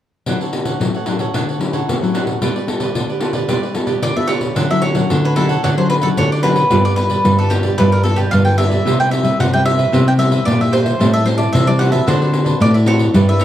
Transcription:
0.26 D3 F#3 C#4 D4 E4 A4 C#5 F#5, pandeiro
0.41 A4 C#5 F#5, pandeiro
0.52 muted cavaquinho stroke, pandeiro
0.65 A4 C#5 F#5, pandeiro
0.80 A2 F#3 C#4 E4, pandeiro
0.94 A4 C#5 F#5, pandeiro
1.06 F#3 C#4 D4 E4 A4 C#5 F#5, pandeiro
1.19 A4 C#5 F#5, pandeiro
1.34 D3 D4 A4 C#5 F#5, pandeiro
1.49 A4 C#5 F#5, pandeiro
1.59 F#3 C#4 E4, muted cavaquinho stroke, pandeiro
1.73 A4 C#5 F#5, pandeiro
1.88 A2, pandeiro
2.02 F#3 C#4 E4 A4 C#5 F#5, pandeiro
2.14 D4 A4 C#5 F#5, pandeiro
2.26 A4 C#5 F#5, pandeiro
2.41 G3 B3 F4 G4 A4 B4 D5, pandeiro
2.56 G4 B4 D5, pandeiro
2.67 B3 F4 A4, muted cavaquinho stroke, pandeiro
2.80 G4 B4 D5, pandeiro
2.95 D3 B3 F4 A4, pandeiro
3.09 G4 B4 D5, pandeiro
3.21 B3 F4 G4 A4 B4 D5, pandeiro
3.33 G4 B4 D5, pandeiro
3.48 G3 F4 G4 B4 D5, pandeiro
3.63 G4 B4 D5, pandeiro
3.74 B3 F4 A4, muted cavaquinho stroke, pandeiro
3.86 G4 B4 D5, pandeiro
4.02 D3 D5, pandeiro
4.16 B3 F4 G4 A4 B4 D5 E5, pandeiro
4.27 F4 G4 B4 C#5 D5, pandeiro
4.39 G4 B4 D5, pandeiro
4.55 D3 F#3 C#4 D4 E4 A4 C#5 F#5, pandeiro
4.70 F#3 C#4 E4 A4 C#5 E5 F#5, pandeiro
4.82 C#5, muted cavaquinho stroke, pandeiro
4.94 F#3 C#4 E4 A4 C#5 F#5, pandeiro
5.09 A2 D3, pandeiro
5.24 A4 B4 C#5 F#5, pandeiro
5.35 F#3 C#4 D4 E4 A4 C#5 F#5, pandeiro
5.49 A4 C#5 F#5, pandeiro
5.63 D3 D4 A4 C#5 F#5, pandeiro
5.77 F#3 C#4 E4 A4 C5 C#5 F#5, pandeiro
5.88 B4, muted cavaquinho stroke, pandeiro
6.01 F#3 C#4 E4 A4 C#5 F#5, pandeiro
6.17 A2 D3 C#5, pandeiro
6.32 D5, pandeiro
6.42 F#3 C#4 D4 E4 A4 B4 C#5 F#5, pandeiro
6.55 A4 C#5 F#5, pandeiro
6.70 G2 G3 B3 F4 G4 A4 B4 D5, pandeiro
6.85 G4 B4 D5, pandeiro
6.96 B4, muted cavaquinho stroke, pandeiro
7.10 G4 B4 D5, pandeiro
7.24 G2 D3 B3 F4 A4, pandeiro
7.39 G4 A4 B4 D5, pandeiro
7.50 B3 F4 G4 A4 B4 D5, pandeiro
7.63 G4 B4 D5, pandeiro
7.78 G2 G3 F4 G4 B4 D5, pandeiro
7.92 G4 A#4 B4 D5, pandeiro
8.04 B3 F4 A4, muted cavaquinho stroke, pandeiro
8.16 G4 B4 D5, pandeiro
8.31 G2 D3 F5, pandeiro
8.45 B3 F4 A4 G5, pandeiro
8.57 F4 G4 B4 D5 E5, pandeiro
8.70 G4 B4 D5, pandeiro
8.84 C3 G3 B3 E4 G4 B4 C5 E5, pandeiro
8.99 B4 C5 E5 G5, pandeiro
9.11 E5, muted cavaquinho stroke, pandeiro
9.23 G3 B3 E4 B4 C5 E5, pandeiro
9.40 G2 C3 F#5, pandeiro
9.53 G3 B3 E4 B4 C5 E5 G5, pandeiro
9.65 G4 B4 C5 E5, pandeiro
9.78 B4 C5 E5, pandeiro
9.92 C3 G3 B3 E4 G4 B4 C5 E5, pandeiro
10.07 B4 C5 E5 G5, pandeiro
10.18 G3 B3 E4 E5, muted cavaquinho stroke, pandeiro
10.31 B4 C5 E5, pandeiro
10.45 G2 A#2 D5, pandeiro
10.60 G3 E4 E5, pandeiro
10.71 G4 B4 C5 E5, pandeiro
10.84 B4 C5 E5, pandeiro
10.99 A2 G3 C4 E4 G4 C5 E5 A5, pandeiro
11.14 C5 E5 A5, pandeiro
11.24 G3 C4 E4 C5, muted cavaquinho stroke, pandeiro
11.37 C5 D5 E5 A5, pandeiro
11.53 C3 E3 E5, pandeiro
11.67 G3 C4 E4 C5 D5 E5 A5, pandeiro
11.78 G4 C5 E5 F#5 A5, pandeiro
11.91 C4 F#4 B4 C5 E5 A5, pandeiro
12.07 D3 F#4 A4 C5 D5, pandeiro
12.21 C4 F#4 A4 B4 C5 D5, pandeiro
12.32 muted cavaquinho stroke, pandeiro
12.44 C4 F#4 A4 B4 C5 D5, pandeiro
12.60 A2 D5, pandeiro
12.74 E5, pandeiro
12.86 C4 F#4 A4 B4 C5 C#5 D5, pandeiro
12.99 A4 C5 D5, pandeiro
13.14 G2 G3 D4 E4 G4 B4 D5, pandeiro
13.28 D4 E4 G4 B4 D5 E5, pandeiro
13.39 C#5, muted cavaquinho stroke, pandeiro

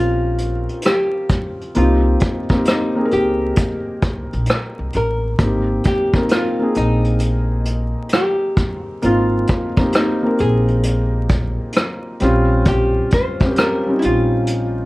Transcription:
Already playing: A#1 C4 C#4 F4 G4 A#4
0.38 closed hi-hat
0.69 closed hi-hat
0.82 G4, closed hi-hat
0.86 cross-stick
1.29 kick, cross-stick, closed hi-hat
1.61 closed hi-hat
1.74 C2 A#3 C4 D#4 F4, closed hi-hat
1.79 G4
2.20 kick, closed hi-hat
2.49 A#3 C4 D#4, kick, closed hi-hat
2.54 G4
2.65 D#4, cross-stick, closed hi-hat
2.95 A#3 C4 D#4 G#4
3.05 A#4
3.11 C#2 G4, closed hi-hat
3.56 kick, closed hi-hat
4.02 C2, kick, closed hi-hat
4.33 A#1, closed hi-hat
4.46 closed hi-hat
4.50 cross-stick
4.79 C2
4.93 A1 A#4, closed hi-hat
5.38 G#1 A#3 C4 D#4, kick, closed hi-hat
5.42 G4
5.84 G4, kick, closed hi-hat
6.14 A#3 C4 D#4 A#4, kick
6.29 F4, cross-stick, closed hi-hat
6.59 A#3 C4 D#4 G#4
6.75 A#1 D#4, closed hi-hat
7.04 closed hi-hat
7.19 closed hi-hat
7.65 closed hi-hat
8.09 closed hi-hat
8.13 G4, cross-stick
8.57 kick, closed hi-hat
9.02 G#1 A#3 C4 D#4 F4, closed hi-hat
9.47 kick, closed hi-hat
9.76 A#3 C4 D#4, kick, closed hi-hat
9.81 G4
9.92 D#4, cross-stick, closed hi-hat
10.23 A#3 C4 D#4 A#4
10.38 A#1 G#4, closed hi-hat
10.68 closed hi-hat
10.83 closed hi-hat
11.29 kick, closed hi-hat
11.72 closed hi-hat
11.77 cross-stick
12.20 A#1 G3 C4 C#4, cross-stick, closed hi-hat
12.24 F4
12.65 G4, kick, closed hi-hat
13.11 C5, kick, closed hi-hat
13.40 G3 C4 C#4, kick, closed hi-hat
13.44 G4
13.56 A#4, cross-stick, closed hi-hat
13.86 G3 C4 C#4 D#4
13.99 E4, closed hi-hat
14.04 A#1 F4
14.47 closed hi-hat

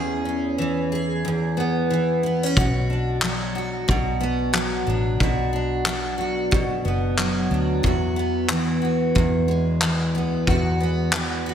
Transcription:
Already playing: E2 E3 B3 C#4 G#4
0.25 C#4
0.58 E3
0.92 G#4
1.25 E2
1.57 B3
1.90 E3
2.23 B3
2.43 C#4
2.57 B1 B2 F#4, kick
2.90 D4
3.22 F#3, clap
3.55 F#4
3.88 B1 B2, kick
4.21 B3
4.53 F#3, clap
4.87 A1 D4
5.20 B1 B2 F#4, kick
5.53 D4
5.85 F#3, clap
6.18 F#4
6.51 B2, kick
6.85 F#1 B3
7.18 F#3, clap
7.50 D2 D4
7.83 E2 F#4, kick
8.16 B3
8.49 E3, clap
8.82 F#4
9.15 E2, kick
9.48 G#3
9.82 E3, clap
10.14 D2 B3
10.47 E2 F#4, kick
10.80 B3
11.13 E3, clap
11.46 F#4

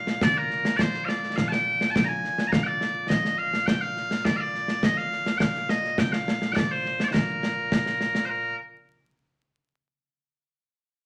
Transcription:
Already playing: A#2 F5
0.07 snare
0.21 D5, concert bass drum, snare
0.37 A#4
0.50 snare
0.65 snare
0.77 D5, concert bass drum, snare
0.81 C5
0.94 snare
1.05 D5 F5, snare
1.23 snare
1.36 F5, concert bass drum, snare
1.48 G5 A5, snare
1.81 snare
1.90 A5
1.95 G5, concert bass drum, snare
2.04 G#5 A#5
2.24 snare
2.38 snare
2.48 A#5
2.52 F5, concert bass drum, snare
2.63 D5 G5
2.81 snare
3.09 D#5, concert bass drum, snare
3.25 snare
3.38 F5
3.53 snare
3.66 G5, concert bass drum, snare
3.81 F5
3.97 snare
4.11 snare
4.25 D5, concert bass drum, snare
4.36 D5 F5
4.55 snare
4.68 snare
4.83 D#5, concert bass drum, snare
4.97 F5
5.12 snare
5.26 snare
5.38 F5 G5, concert bass drum, snare
5.55 snare
5.69 D#5, snare
5.84 snare
5.98 G5, concert bass drum, snare
6.12 F5, snare
6.28 snare
6.42 snare
6.52 D5 G5
6.57 concert bass drum, snare
6.71 C5
6.85 snare
7.00 D5, snare
7.08 C5
7.13 A#4, concert bass drum, snare
7.43 snare
7.72 concert bass drum, snare
7.86 snare
8.01 snare
8.15 snare
8.25 C5
8.29 A#4

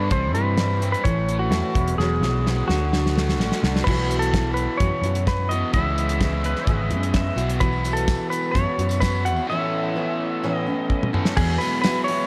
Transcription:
Already playing: G3 B3 D4 A4 B4
0.11 C2 C3 E3 G3 C4 E4 C5, kick, closed hi-hat
0.33 G2 E3 G3 C4 E4 B4, closed hi-hat
0.57 E3 G3 C4 E4, snare, closed hi-hat
0.80 G3 C4 E4, closed hi-hat
0.92 B4, closed hi-hat
1.04 A1 A2 E3 A3 C#4 E4 C#5, kick, closed hi-hat
1.29 A3, closed hi-hat
1.39 F#4
1.49 E2 E3 A3 C#4 E4, snare, closed hi-hat
1.75 E1 E2 F#3 G#3 B3 E4, kick, closed hi-hat
1.88 closed hi-hat
1.98 E1 E2 B2 F#3 G#3 B3 E4 G#4, snare
2.21 B1 E3 B3 E4, snare
2.25 F#3 G#3
2.47 F#3 G#3 B3, snare
2.51 E4
2.68 D2 D3 F#4, snare
2.72 D3 A3 D4
2.93 D3, snare
3.06 snare
3.16 A3, snare
3.29 snare
3.39 A1 D3 A3 F#4, snare
3.44 D4 F#4
3.52 snare
3.63 C2 D4, snare
3.76 snare
3.84 B1 B2 E3 B3 E4 B4, kick, crash
3.88 F#4
4.11 closed hi-hat
4.19 A4, closed hi-hat
4.34 E3 B3 E4 F#4, kick, snare, closed hi-hat
4.54 B4, closed hi-hat
4.77 F#2 B2 E3 B3 C#5, kick, closed hi-hat
4.82 E4 F#4
5.02 F#2 E4 F#4, closed hi-hat
5.07 B3
5.15 closed hi-hat
5.27 B4, kick, snare, closed hi-hat
5.49 E4 F#4 D#5, closed hi-hat
5.53 B2 E3 B3
5.73 C#2 C#3 E3 G#3 B3 C#4 E4 E5, kick, closed hi-hat
5.98 closed hi-hat
6.09 closed hi-hat
6.21 E3 G#3 B3, kick, snare, closed hi-hat
6.25 E4
6.44 B4, closed hi-hat
6.56 snare
6.67 G#1 C#3 E3 G#3 B3 E4 E5, kick, closed hi-hat
6.77 D#5
6.89 F#2 B3 E4, closed hi-hat
6.94 G#3
7.03 closed hi-hat
7.14 E5, kick, snare, closed hi-hat
7.36 B1 B2 E3 B3 E4 F#4, closed hi-hat
7.50 closed hi-hat
7.60 B2 E3 B3 E4 F#4 B4, kick, closed hi-hat, tambourine
7.72 tambourine
7.84 closed hi-hat, tambourine
7.93 A4, closed hi-hat
8.07 E3 B3 E4 F#4, kick, snare, closed hi-hat, tambourine
8.30 B4, closed hi-hat, tambourine
8.43 tambourine
8.51 F#2 B2 E3 B3 E4 C#5, kick, tambourine
8.56 F#4, closed hi-hat
8.78 F#2 B3 E4 F#4, closed hi-hat
8.89 closed hi-hat, tambourine
9.00 B2 E3 B3 E4 F#4 B4, kick, snare, closed hi-hat, tambourine
9.24 B3 E4 F#4 F#5, closed hi-hat
9.36 tambourine
9.48 A2 E3 A3 B3 C#4 E4 A4 E5
9.95 E3 B3 C#4 E4
10.43 A2 E3 B3 C#4 E4
10.53 D#5
10.67 B3 C#4 E4
10.90 kick
11.03 mid tom
11.13 A2 E3 A3 B3 C#4 E4 A4, mid tom
11.25 snare
11.37 E2 B2 E3 F#3 G#3 B3 E4 G#4, kick, crash
11.58 F#3 G#3 B3 E4 B4, open hi-hat, tambourine
11.63 E2 B2
11.82 E3 F#3 G#3 B4, snare, open hi-hat, tambourine
11.86 B3 E4
12.04 C#5, open hi-hat
12.08 F#3 G#3 B3 E4

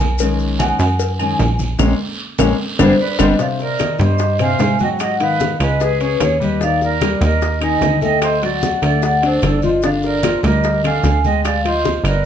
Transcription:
Already playing: B1 A#4
0.00 cowbell, high conga, short guiro
0.18 D#3 G#3 C#4, cowbell, high conga, low agogo, long guiro, maracas
0.39 high conga, maracas
0.59 F#5, cowbell, high conga, low timbale, low agogo, short guiro, claves, maracas
0.79 F#2, cowbell, high conga, low agogo, short guiro, maracas
0.99 cowbell, high conga, long guiro, maracas
1.19 D#3 G#3 C#4 G#5, high conga, low agogo, claves, maracas
1.39 A#1, cowbell, high conga, low timbale, short guiro, maracas
1.59 high conga, short guiro, maracas
1.79 A#1 G#3 A#3 C#4, cowbell, high conga, high timbale, long guiro, claves, maracas
2.38 A#1 G#3 A#3 C#4, cowbell, high conga, high timbale, long guiro, claves, maracas
2.79 G1 G3 B3 D4 G#4 C5, cowbell, high conga, high timbale, claves, maracas
3.00 B4 D5
3.19 G1 G3 B3 D4 C5 D#5, cowbell, high conga, high timbale, long guiro, claves, maracas
3.39 C3 C4 D5 F5, high bongo, long guiro, maracas
3.59 A#4 D5, high bongo, high conga, maracas
3.79 D#3 D#4, high bongo, high conga, high timbale, short guiro, claves, maracas
3.99 G2 G3 G4 C5 D#5, high conga, high timbale, short guiro, maracas
4.18 high bongo, high conga, long guiro, maracas
4.39 C3 C4 F5 G#5, high bongo, high timbale, claves, maracas
4.59 G#2, high bongo, low bongo, high conga, high timbale, low timbale, short guiro, maracas
4.79 F#3 F#4 G5, high conga, short guiro, maracas
4.83 D#5
4.99 D#5 F#5, high bongo, high conga, high timbale, long guiro, claves, maracas
5.20 D#3 D#4 B4 F5, high bongo, high conga, high timbale, maracas
5.40 high bongo, high conga, short guiro, maracas
5.60 C#2 G#3 G#4 B4 D#5, high timbale, short guiro, claves, maracas
5.80 G#4 B4, high bongo, high conga, long guiro, maracas
6.01 C#4 G#4 B4 C#5, high bongo, high conga, high timbale, maracas
6.20 D#2 G#4 C#5, high bongo, low bongo, high conga, high timbale, short guiro, claves, maracas
6.40 G3 G4 B4 D#5, high conga, short guiro, maracas
6.60 D#3 D#4 D5 F5, high bongo, high conga, long guiro, maracas
6.81 A#4 D5, high bongo, high conga, maracas
7.01 G3 G4, high bongo, high conga, high timbale, short guiro, claves, maracas
7.21 D#2 A#3 A#4 D#5, high conga, high timbale, short guiro, maracas
7.42 high bongo, high conga, long guiro, maracas
7.61 D#3 D#4 D#5 G#5, high bongo, high conga, high timbale, claves, maracas
7.81 D2, high bongo, low bongo, high conga, high timbale, low timbale, short guiro, maracas
8.01 A3 A4 D#5 G5, high conga, short guiro, maracas
8.21 C5 D#5, high bongo, high conga, high timbale, long guiro, claves, maracas
8.42 F#3 F#4 D5 F#5, high bongo, high conga, high timbale, maracas
8.62 high bongo, high conga, short guiro, maracas
8.82 D2 A3 A4 D5 F#5, high conga, high timbale, short guiro, claves, maracas
9.02 D5 F#5, high bongo, high conga, long guiro, maracas
9.22 D4 A4 C5 D5, high bongo, high conga, high timbale, maracas
9.42 G1 A4 D5, high bongo, low bongo, high conga, high timbale, low timbale, short guiro, claves, maracas
9.62 F3 F4 C5 D#5, high conga, short guiro, maracas
9.82 D3 D4 D5 F5, high bongo, high conga, long guiro, maracas
10.03 A#4 D5, high bongo, high conga, maracas
10.23 F3 F4, high bongo, high conga, high timbale, short guiro, claves, maracas
10.43 D2 G3 G4 A#4 D#5, high conga, high timbale, short guiro, maracas
10.64 high bongo, high conga, long guiro, maracas
10.84 D3 D4 F5 G#5, high bongo, high conga, high timbale, claves, maracas
11.03 D2, high bongo, low bongo, high conga, high timbale, short guiro, maracas
11.24 G#3 G#4 D#5 G5, high conga, short guiro, maracas
11.44 D5 F5, high bongo, high conga, high timbale, long guiro, claves, maracas
11.65 F3 F4 C5 D#5, high bongo, high conga, high timbale, maracas
11.85 high bongo, high conga, short guiro, maracas
12.04 G1 B3 A#4 B4 D5, high timbale, short guiro, claves, maracas

